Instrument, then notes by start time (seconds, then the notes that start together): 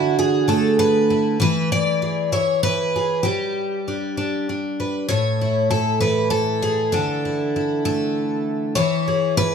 twelve-string acoustic guitar
Already playing: D3 E3 E4 F#4
0.19 G#4
0.48 A3 A4
0.79 B4
1.10 E4
1.40 E3 B4
1.72 D5
2.02 G#4
2.32 E4 C#5
2.63 B4
2.96 G#4
3.23 G3 G4
3.88 D4
4.17 D4
4.49 D4
4.80 B4
5.09 A2 C#5
5.41 E4
5.71 A4
6.01 E3 B4
6.30 A4
6.62 G#4
6.92 D3 A4
7.25 E4
7.56 E4
7.85 A3 A4
8.75 E3 C#5
9.08 G#4
9.37 B4